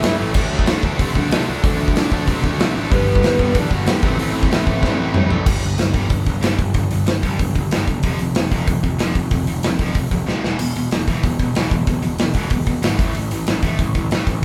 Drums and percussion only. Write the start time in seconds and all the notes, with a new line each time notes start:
0.03 snare, open hi-hat
0.34 kick, crash
0.59 kick
0.66 snare, open hi-hat
0.83 kick
0.99 kick, open hi-hat
1.15 kick
1.31 snare, open hi-hat
1.64 kick, open hi-hat
1.88 kick
1.96 snare, open hi-hat
2.12 kick
2.27 kick, open hi-hat
2.44 kick
2.60 snare, open hi-hat
2.92 kick, open hi-hat
3.15 kick
3.23 snare, open hi-hat
3.39 kick
3.55 kick, open hi-hat
3.71 kick
3.86 snare, open hi-hat
4.03 kick
4.19 open hi-hat
4.43 kick
4.51 snare, open hi-hat
4.67 kick
4.83 kick, snare
5.14 mid tom
5.30 floor tom
5.46 kick, crash
5.62 open hi-hat
5.78 snare, open hi-hat
5.94 kick, open hi-hat
6.10 kick, open hi-hat
6.26 kick, open hi-hat
6.43 snare, open hi-hat
6.59 kick, open hi-hat
6.74 kick, open hi-hat
6.91 open hi-hat
7.07 snare, open hi-hat
7.23 kick, open hi-hat
7.39 kick, open hi-hat
7.56 kick, open hi-hat
7.71 snare, open hi-hat
7.88 kick, open hi-hat
8.03 kick, open hi-hat
8.19 open hi-hat
8.35 snare, open hi-hat
8.51 kick, open hi-hat
8.67 kick, open hi-hat
8.84 kick, open hi-hat
8.99 snare, open hi-hat
9.15 kick, open hi-hat
9.31 kick, open hi-hat
9.47 open hi-hat
9.63 snare, open hi-hat
9.79 kick, open hi-hat
9.95 kick, open hi-hat
10.11 kick, open hi-hat
10.29 snare
10.44 snare
10.59 open hi-hat, splash
10.76 open hi-hat
10.91 snare, open hi-hat
11.08 kick, open hi-hat
11.23 kick, open hi-hat
11.39 kick, open hi-hat
11.55 snare, open hi-hat
11.71 kick, open hi-hat
11.87 kick, open hi-hat
12.03 open hi-hat
12.18 snare, open hi-hat
12.34 kick, open hi-hat
12.50 kick, open hi-hat
12.66 kick, open hi-hat
12.83 snare, open hi-hat
12.99 kick, open hi-hat
13.15 open hi-hat
13.31 open hi-hat
13.47 snare, open hi-hat
13.62 kick, open hi-hat
13.79 kick, open hi-hat
13.95 kick, open hi-hat
14.11 snare, open hi-hat
14.27 kick, open hi-hat